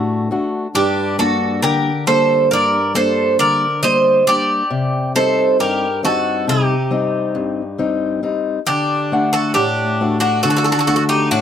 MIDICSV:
0, 0, Header, 1, 4, 480
1, 0, Start_track
1, 0, Key_signature, -2, "minor"
1, 0, Tempo, 881057
1, 406, Time_signature, 9, 3, 24, 8
1, 6217, End_track
2, 0, Start_track
2, 0, Title_t, "Bouzouki"
2, 0, Program_c, 0, 25
2, 411, Note_on_c, 0, 67, 83
2, 646, Note_off_c, 0, 67, 0
2, 648, Note_on_c, 0, 69, 81
2, 870, Note_off_c, 0, 69, 0
2, 885, Note_on_c, 0, 70, 83
2, 1108, Note_off_c, 0, 70, 0
2, 1128, Note_on_c, 0, 72, 85
2, 1349, Note_off_c, 0, 72, 0
2, 1380, Note_on_c, 0, 74, 94
2, 1596, Note_off_c, 0, 74, 0
2, 1614, Note_on_c, 0, 72, 90
2, 1832, Note_off_c, 0, 72, 0
2, 1848, Note_on_c, 0, 74, 89
2, 2069, Note_off_c, 0, 74, 0
2, 2085, Note_on_c, 0, 75, 92
2, 2307, Note_off_c, 0, 75, 0
2, 2327, Note_on_c, 0, 74, 98
2, 2807, Note_off_c, 0, 74, 0
2, 2809, Note_on_c, 0, 72, 86
2, 3029, Note_off_c, 0, 72, 0
2, 3052, Note_on_c, 0, 70, 87
2, 3270, Note_off_c, 0, 70, 0
2, 3297, Note_on_c, 0, 69, 83
2, 3535, Note_off_c, 0, 69, 0
2, 3537, Note_on_c, 0, 67, 77
2, 4467, Note_off_c, 0, 67, 0
2, 4721, Note_on_c, 0, 67, 85
2, 5079, Note_off_c, 0, 67, 0
2, 5082, Note_on_c, 0, 69, 81
2, 5195, Note_off_c, 0, 69, 0
2, 5197, Note_on_c, 0, 67, 78
2, 5556, Note_off_c, 0, 67, 0
2, 5558, Note_on_c, 0, 66, 76
2, 5671, Note_off_c, 0, 66, 0
2, 5682, Note_on_c, 0, 69, 84
2, 5715, Note_off_c, 0, 69, 0
2, 5721, Note_on_c, 0, 69, 67
2, 5749, Note_off_c, 0, 69, 0
2, 5756, Note_on_c, 0, 69, 74
2, 5792, Note_off_c, 0, 69, 0
2, 5799, Note_on_c, 0, 69, 71
2, 5834, Note_off_c, 0, 69, 0
2, 5841, Note_on_c, 0, 69, 77
2, 5872, Note_off_c, 0, 69, 0
2, 5878, Note_on_c, 0, 69, 67
2, 5917, Note_off_c, 0, 69, 0
2, 5923, Note_on_c, 0, 69, 73
2, 5963, Note_off_c, 0, 69, 0
2, 5971, Note_on_c, 0, 69, 66
2, 6007, Note_off_c, 0, 69, 0
2, 6041, Note_on_c, 0, 67, 78
2, 6153, Note_off_c, 0, 67, 0
2, 6162, Note_on_c, 0, 66, 81
2, 6217, Note_off_c, 0, 66, 0
2, 6217, End_track
3, 0, Start_track
3, 0, Title_t, "Bouzouki"
3, 0, Program_c, 1, 25
3, 409, Note_on_c, 1, 62, 69
3, 630, Note_off_c, 1, 62, 0
3, 652, Note_on_c, 1, 66, 65
3, 872, Note_off_c, 1, 66, 0
3, 890, Note_on_c, 1, 67, 72
3, 1111, Note_off_c, 1, 67, 0
3, 1129, Note_on_c, 1, 69, 68
3, 1350, Note_off_c, 1, 69, 0
3, 1367, Note_on_c, 1, 70, 75
3, 1589, Note_off_c, 1, 70, 0
3, 1609, Note_on_c, 1, 69, 76
3, 1829, Note_off_c, 1, 69, 0
3, 1853, Note_on_c, 1, 70, 79
3, 2072, Note_off_c, 1, 70, 0
3, 2092, Note_on_c, 1, 72, 79
3, 2311, Note_off_c, 1, 72, 0
3, 2336, Note_on_c, 1, 67, 84
3, 2787, Note_off_c, 1, 67, 0
3, 2811, Note_on_c, 1, 69, 77
3, 3030, Note_off_c, 1, 69, 0
3, 3053, Note_on_c, 1, 67, 66
3, 3271, Note_off_c, 1, 67, 0
3, 3294, Note_on_c, 1, 66, 63
3, 3511, Note_off_c, 1, 66, 0
3, 3538, Note_on_c, 1, 63, 59
3, 4468, Note_off_c, 1, 63, 0
3, 4725, Note_on_c, 1, 62, 65
3, 5061, Note_off_c, 1, 62, 0
3, 5086, Note_on_c, 1, 66, 67
3, 5196, Note_off_c, 1, 66, 0
3, 5201, Note_on_c, 1, 62, 67
3, 5540, Note_off_c, 1, 62, 0
3, 5561, Note_on_c, 1, 62, 69
3, 5673, Note_off_c, 1, 62, 0
3, 5684, Note_on_c, 1, 66, 70
3, 5716, Note_off_c, 1, 66, 0
3, 5723, Note_on_c, 1, 66, 54
3, 5758, Note_off_c, 1, 66, 0
3, 5765, Note_on_c, 1, 66, 58
3, 5799, Note_off_c, 1, 66, 0
3, 5805, Note_on_c, 1, 66, 54
3, 5835, Note_off_c, 1, 66, 0
3, 5842, Note_on_c, 1, 66, 63
3, 5880, Note_off_c, 1, 66, 0
3, 5887, Note_on_c, 1, 66, 56
3, 5919, Note_off_c, 1, 66, 0
3, 5925, Note_on_c, 1, 66, 67
3, 5964, Note_off_c, 1, 66, 0
3, 5972, Note_on_c, 1, 66, 54
3, 6008, Note_off_c, 1, 66, 0
3, 6043, Note_on_c, 1, 63, 73
3, 6154, Note_off_c, 1, 63, 0
3, 6164, Note_on_c, 1, 62, 76
3, 6217, Note_off_c, 1, 62, 0
3, 6217, End_track
4, 0, Start_track
4, 0, Title_t, "Steel-string acoustic guitar"
4, 0, Program_c, 2, 25
4, 0, Note_on_c, 2, 45, 62
4, 0, Note_on_c, 2, 57, 47
4, 0, Note_on_c, 2, 62, 40
4, 0, Note_on_c, 2, 66, 50
4, 154, Note_off_c, 2, 45, 0
4, 162, Note_off_c, 2, 57, 0
4, 163, Note_off_c, 2, 62, 0
4, 167, Note_off_c, 2, 66, 0
4, 168, Note_on_c, 2, 57, 46
4, 172, Note_on_c, 2, 62, 42
4, 173, Note_on_c, 2, 66, 51
4, 359, Note_off_c, 2, 57, 0
4, 360, Note_off_c, 2, 62, 0
4, 362, Note_off_c, 2, 66, 0
4, 406, Note_on_c, 2, 43, 65
4, 644, Note_on_c, 2, 55, 45
4, 648, Note_on_c, 2, 58, 43
4, 650, Note_on_c, 2, 62, 51
4, 871, Note_off_c, 2, 43, 0
4, 888, Note_on_c, 2, 50, 64
4, 1028, Note_off_c, 2, 55, 0
4, 1029, Note_off_c, 2, 58, 0
4, 1031, Note_off_c, 2, 62, 0
4, 1128, Note_on_c, 2, 55, 47
4, 1129, Note_on_c, 2, 58, 42
4, 1131, Note_on_c, 2, 62, 50
4, 1351, Note_off_c, 2, 50, 0
4, 1368, Note_on_c, 2, 43, 66
4, 1510, Note_off_c, 2, 55, 0
4, 1510, Note_off_c, 2, 58, 0
4, 1512, Note_off_c, 2, 62, 0
4, 1604, Note_on_c, 2, 55, 46
4, 1607, Note_on_c, 2, 58, 45
4, 1610, Note_on_c, 2, 62, 55
4, 1831, Note_off_c, 2, 43, 0
4, 1849, Note_on_c, 2, 50, 66
4, 1987, Note_off_c, 2, 55, 0
4, 1990, Note_off_c, 2, 58, 0
4, 1990, Note_off_c, 2, 62, 0
4, 2088, Note_on_c, 2, 55, 43
4, 2088, Note_on_c, 2, 58, 40
4, 2311, Note_off_c, 2, 50, 0
4, 2318, Note_off_c, 2, 55, 0
4, 2323, Note_off_c, 2, 58, 0
4, 2324, Note_on_c, 2, 55, 46
4, 2329, Note_on_c, 2, 58, 42
4, 2331, Note_on_c, 2, 62, 52
4, 2515, Note_off_c, 2, 55, 0
4, 2518, Note_off_c, 2, 62, 0
4, 2519, Note_off_c, 2, 58, 0
4, 2563, Note_on_c, 2, 48, 65
4, 2806, Note_on_c, 2, 55, 48
4, 2810, Note_on_c, 2, 60, 44
4, 2813, Note_on_c, 2, 63, 54
4, 3028, Note_off_c, 2, 48, 0
4, 3048, Note_on_c, 2, 43, 64
4, 3189, Note_off_c, 2, 55, 0
4, 3191, Note_off_c, 2, 60, 0
4, 3191, Note_off_c, 2, 63, 0
4, 3284, Note_on_c, 2, 55, 46
4, 3286, Note_on_c, 2, 60, 45
4, 3291, Note_on_c, 2, 63, 50
4, 3510, Note_off_c, 2, 43, 0
4, 3527, Note_on_c, 2, 48, 63
4, 3667, Note_off_c, 2, 55, 0
4, 3669, Note_off_c, 2, 60, 0
4, 3670, Note_off_c, 2, 63, 0
4, 3762, Note_on_c, 2, 55, 50
4, 3765, Note_on_c, 2, 60, 45
4, 3769, Note_on_c, 2, 63, 52
4, 3990, Note_off_c, 2, 48, 0
4, 4003, Note_on_c, 2, 43, 65
4, 4146, Note_off_c, 2, 55, 0
4, 4148, Note_off_c, 2, 60, 0
4, 4149, Note_off_c, 2, 63, 0
4, 4241, Note_on_c, 2, 55, 45
4, 4244, Note_on_c, 2, 60, 43
4, 4245, Note_on_c, 2, 63, 54
4, 4468, Note_off_c, 2, 43, 0
4, 4475, Note_off_c, 2, 55, 0
4, 4477, Note_off_c, 2, 60, 0
4, 4481, Note_off_c, 2, 63, 0
4, 4482, Note_on_c, 2, 55, 45
4, 4484, Note_on_c, 2, 60, 41
4, 4487, Note_on_c, 2, 63, 54
4, 4674, Note_off_c, 2, 55, 0
4, 4675, Note_off_c, 2, 60, 0
4, 4677, Note_off_c, 2, 63, 0
4, 4730, Note_on_c, 2, 50, 66
4, 4968, Note_on_c, 2, 57, 50
4, 4973, Note_on_c, 2, 62, 45
4, 4974, Note_on_c, 2, 78, 55
4, 5192, Note_off_c, 2, 50, 0
4, 5207, Note_off_c, 2, 62, 0
4, 5210, Note_on_c, 2, 45, 67
4, 5350, Note_off_c, 2, 57, 0
4, 5353, Note_off_c, 2, 78, 0
4, 5452, Note_on_c, 2, 57, 45
4, 5454, Note_on_c, 2, 62, 44
4, 5457, Note_on_c, 2, 66, 53
4, 5672, Note_off_c, 2, 45, 0
4, 5691, Note_on_c, 2, 50, 66
4, 5832, Note_off_c, 2, 57, 0
4, 5834, Note_off_c, 2, 62, 0
4, 5835, Note_off_c, 2, 66, 0
4, 5921, Note_on_c, 2, 57, 47
4, 5922, Note_on_c, 2, 62, 44
4, 5925, Note_on_c, 2, 66, 51
4, 6153, Note_off_c, 2, 50, 0
4, 6163, Note_on_c, 2, 45, 65
4, 6217, Note_off_c, 2, 45, 0
4, 6217, Note_off_c, 2, 57, 0
4, 6217, Note_off_c, 2, 62, 0
4, 6217, Note_off_c, 2, 66, 0
4, 6217, End_track
0, 0, End_of_file